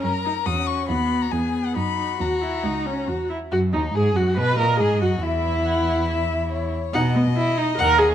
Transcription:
0.03 cello F#2, viola C#4, violin A#4 A#5
0.25 viola D#4
0.46 cello E2, viola C#4, violin F#4 D#6
0.67 violin C#6
0.89 cello D#2, viola B3, violin F#4 B5
1.22 violin A#5
1.31 cello E2, viola B3, violin G#4 G#5
1.65 violin F#5
1.75 cello F#2, viola D#4, violin F#4 B5
2.20 cello D#2, viola F#4, violin A#5
2.42 viola E4
2.64 cello C#2, viola D#4
2.86 viola C#4
3.08 cello E2, viola F#4
3.30 viola E4
3.52 cello F#2, viola F#4, violin F#4
3.73 cello D#2, violin D#4, viola D#4
3.94 cello G#2, viola G#4, violin G#4
4.16 cello F#2, viola F#4, violin F#4
4.37 cello B2, viola B4, violin B4 D#5
4.59 cello A#2, viola A#4, violin A#4
4.80 cello G#2, viola G#4, violin G#4
5.02 cello F#2, viola F#4, violin F#4
5.22 cello E2, viola E4, violin E4 E5
5.66 violin F#5
6.08 violin E5
6.51 violin C#5
6.93 cello B2, viola D#4, violin D#5 F#5
7.15 viola B3
7.36 viola E4
7.58 viola D#4
7.78 cello D#2, viola A#4, violin F#5
7.99 viola G#4

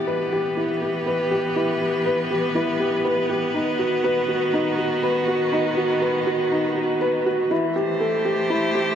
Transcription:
Already playing: string quartet E3 B3 D5, felt piano E4 G4
0.06 string quartet G4 B4, felt piano B4
0.32 felt piano G4
0.57 felt piano E4
0.82 felt piano G4
1.06 felt piano B4
1.31 felt piano G4
1.56 felt piano E4
1.81 felt piano G4
2.06 felt piano B4
2.30 felt piano G4
2.55 felt piano E4
2.80 felt piano G4
3.05 felt piano B4
3.29 felt piano G4
3.54 string quartet D#3, felt piano D#4
3.71 string quartet F#4
3.79 felt piano F#4
4.04 felt piano B4
4.28 felt piano F#4
4.53 felt piano D#4
4.78 felt piano F#4
5.03 felt piano B4
5.28 felt piano F#4
5.52 felt piano D#4
5.77 felt piano F#4
6.02 felt piano B4
6.27 felt piano F#4
6.52 felt piano D#4
6.77 felt piano F#4
7.01 felt piano B4
7.26 felt piano F#4
7.51 string quartet E3, felt piano E4
7.72 string quartet A3, felt piano G4
7.79 string quartet C5
7.99 string quartet G4, felt piano A4
8.25 felt piano G4
8.50 felt piano E4
8.75 felt piano G4

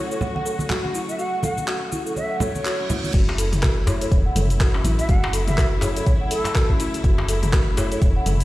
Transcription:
Already playing: string section C#3 F#3 A3 F#4
0.11 marimba A4, flute C#5, cabasa
0.21 marimba C#5, low conga, cabasa
0.35 marimba F#5, high conga
0.46 marimba A4, cabasa
0.59 high conga, cabasa
0.70 marimba F#4, clap, low conga, cabasa
0.84 marimba C#4, high conga
0.94 marimba E4, cabasa
1.09 flute E5, cabasa
1.19 marimba F#4, flute F#5, cabasa
1.43 marimba A4, flute F#5, high conga, low conga, cabasa
1.58 high conga, cabasa
1.67 marimba F#4, clap, cabasa
1.92 marimba E4, high conga, cabasa
2.06 marimba A4, cabasa
2.16 marimba C#5, flute E5, reverse cymbal, high conga, cabasa
2.31 marimba F#5
2.40 marimba A4, flute C#5, low conga, cabasa
2.55 high conga, cabasa
2.65 marimba F#4, clap, cabasa
2.80 marimba C#4
2.90 marimba E4, low conga, cabasa
3.04 high conga, cabasa
3.14 fm bass F#1, string section C#3 F#3 A3 E4, marimba F#4, kick, closed hi-hat, crash, cabasa
3.29 djembe slap
3.38 marimba A4, open hi-hat, cabasa
3.52 closed hi-hat, mid tom, djembe tone, cabasa
3.63 marimba F#4, kick, cross-stick, clap, closed hi-hat, cabasa
3.87 marimba E4, flute C#5, open hi-hat, djembe slap, djembe tone, djembe bass, cabasa
4.01 marimba A4, flute C#5, closed hi-hat, cabasa
4.12 fm bass E1, marimba C#5, kick, closed hi-hat, cabasa
4.26 marimba F#5
4.36 fm bass F#1, marimba A4, open hi-hat, mid tom, djembe tone, cabasa
4.50 closed hi-hat, cabasa
4.60 marimba F#4, kick, cross-stick, clap, closed hi-hat, cabasa
4.74 marimba C#4, djembe slap
4.84 fm bass A1, marimba E4, open hi-hat, cabasa
4.99 flute E5, closed hi-hat, cabasa
5.09 fm bass F#1, marimba F#4, flute F#5, kick, closed hi-hat, cabasa
5.24 djembe slap
5.33 marimba A4, open hi-hat, cabasa
5.47 flute E5, closed hi-hat, mid tom, djembe tone, cabasa
5.58 marimba F#4, kick, cross-stick, clap, closed hi-hat, cabasa
5.72 djembe tone
5.81 marimba E4, flute C#5, open hi-hat, djembe slap, djembe tone, djembe bass, cabasa
5.96 marimba A4, flute C#5, closed hi-hat, cabasa
6.06 marimba C#5, kick, closed hi-hat, cabasa
6.21 marimba F#5
6.31 marimba A4, flute A4, open hi-hat, cabasa
6.44 closed hi-hat, djembe slap, djembe tone, cabasa
6.55 marimba F#4, kick, cross-stick, clap, closed hi-hat, cabasa
6.70 marimba C#4, kick
6.80 marimba E4, open hi-hat, cabasa
6.94 closed hi-hat, cabasa
7.04 fm bass F#1, marimba F#4, kick, closed hi-hat, cabasa
7.18 djembe slap
7.29 marimba A4, open hi-hat, cabasa
7.42 closed hi-hat, mid tom, djembe tone, cabasa
7.53 marimba F#4, kick, cross-stick, clap, closed hi-hat, cabasa
7.77 marimba E4, flute C#5, open hi-hat, djembe slap, djembe tone, djembe bass, cabasa
7.92 marimba A4, flute C#5, closed hi-hat, cabasa
8.02 fm bass E1, marimba C#5, kick, closed hi-hat, cabasa
8.16 marimba F#5
8.26 fm bass F#1, marimba A4, open hi-hat, mid tom, djembe tone, cabasa
8.40 closed hi-hat, cabasa

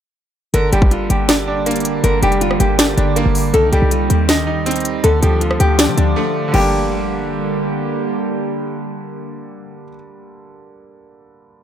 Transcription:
0.54 808-style bass G1, ambient pad D3 G3 A#3 G4, grand piano D3, nylon-string guitar A#4, closed hi-hat
0.72 808-style bass G1, grand piano G3, nylon-string guitar G4, closed hi-hat
0.82 kick
0.91 nylon-string guitar F4, closed hi-hat
1.10 808-style bass G1, nylon-string guitar G4, closed hi-hat
1.29 grand piano D5, snare, closed hi-hat
1.48 grand piano D4
1.66 grand piano A#3, closed hi-hat
1.71 closed hi-hat
1.76 closed hi-hat
1.80 closed hi-hat
1.85 closed hi-hat
2.04 808-style bass G1, grand piano D3, nylon-string guitar A#4, closed hi-hat
2.23 808-style bass F1, grand piano G3, nylon-string guitar G4, closed hi-hat
2.32 closed hi-hat
2.41 nylon-string guitar F4, closed hi-hat
2.51 cross-stick
2.60 808-style bass G1, nylon-string guitar G4, closed hi-hat
2.79 grand piano D5, snare, closed hi-hat
2.98 808-style bass G1, grand piano D4, closed hi-hat
3.16 grand piano A#3, closed hi-hat
3.26 808-style bass G1
3.35 open hi-hat
3.54 808-style bass C2, grand piano D#3, ambient pad D#3 C4, nylon-string guitar A4, closed hi-hat
3.72 808-style bass C2, grand piano G3, nylon-string guitar G4, closed hi-hat
3.82 808-style bass C2
3.91 nylon-string guitar F4, closed hi-hat
4.10 808-style bass D#2, nylon-string guitar G4, closed hi-hat
4.29 grand piano D#5, snare, closed hi-hat
4.47 grand piano D#4
4.66 grand piano C4, closed hi-hat
4.71 closed hi-hat
4.76 closed hi-hat
4.80 closed hi-hat
4.85 closed hi-hat
5.04 808-style bass D2, grand piano D3, ambient pad D3 F3 A3 F4, nylon-string guitar A4, closed hi-hat
5.22 808-style bass D2, grand piano F3, nylon-string guitar G4, closed hi-hat
5.41 nylon-string guitar F4, closed hi-hat
5.51 cross-stick
5.60 808-style bass D2, nylon-string guitar G4, closed hi-hat
5.79 grand piano D5, snare, closed hi-hat
5.88 808-style bass D3
5.98 808-style bass D2, grand piano D4, closed hi-hat
6.16 grand piano A3
6.48 grand piano D3
6.52 808-style bass G1, ambient pad D3 G3 A#3 G4, grand piano G3, nylon-string guitar G4, crash
6.56 grand piano A#3
6.60 grand piano D4

